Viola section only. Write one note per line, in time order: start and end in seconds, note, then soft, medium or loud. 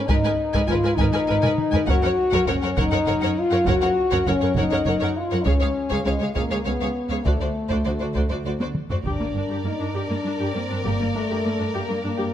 0.09 0.15 A#4 medium
0.25 0.31 A#4 soft
0.55 0.60 A#4 medium
0.70 0.76 A#4 medium
0.84 0.90 A#4 soft
1.00 1.05 A#4 medium
1.14 1.20 A#4 soft
1.28 1.34 A#4 medium
1.42 1.49 A#4 medium
1.74 1.79 A#4 medium
1.89 1.94 A#4 medium
2.03 2.09 A#4 soft
2.33 2.39 A#4 medium
2.48 2.54 A#4 soft
2.63 2.69 A#4 medium
2.78 2.84 A#4 medium
2.92 2.98 A#4 soft
3.07 3.13 A#4 medium
3.22 3.28 A#4 medium
3.52 3.58 A#4 medium
3.66 3.72 A#4 medium
3.82 3.88 A#4 soft
4.12 4.18 A#4 medium
4.27 4.33 A#4 soft
4.43 4.49 A#4 medium
4.57 4.63 A#4 medium
4.72 4.78 A#4 soft
4.87 4.93 A#4 medium
5.02 5.08 A#4 medium
5.32 5.38 A#4 soft
5.45 5.52 G#4 medium
5.61 5.67 G#4 soft
5.91 5.97 G#4 medium
6.06 6.12 G#4 soft
6.21 6.27 G#4 soft
6.36 6.42 G#4 medium
6.52 6.57 G#4 soft
6.67 6.73 G#4 soft
6.82 6.87 G#4 medium
7.11 7.17 G#4 soft
7.26 7.32 F#4 soft
7.42 7.48 F#4 soft
7.71 7.77 F#4 soft
7.87 7.92 F#4 soft
8.01 8.07 F#4 soft
8.16 8.22 F#4 soft
8.31 8.37 F#4 soft
8.45 8.51 F#4 soft
8.60 8.66 F#4 soft
8.90 8.96 F#4 soft
9.06 9.11 G4 soft
9.20 9.26 A#3 soft
9.36 9.42 D4 soft
9.50 9.56 G4 soft
9.65 9.71 A#3 soft
9.80 9.86 D4 soft
9.95 10.00 G4 soft
10.10 10.15 A#3 soft
10.25 10.31 D4 soft
10.40 10.46 G4 medium
10.55 10.61 A#3 soft
10.70 10.76 D4 soft
10.85 10.91 G4 soft
10.99 11.05 A#3 soft
11.15 11.21 D4 soft
11.30 11.36 G4 soft
11.45 11.50 A#3 soft
11.59 11.65 D4 soft
11.74 11.80 G4 medium
11.89 11.95 A#3 soft
12.03 12.09 D4 soft
12.18 12.24 G4 medium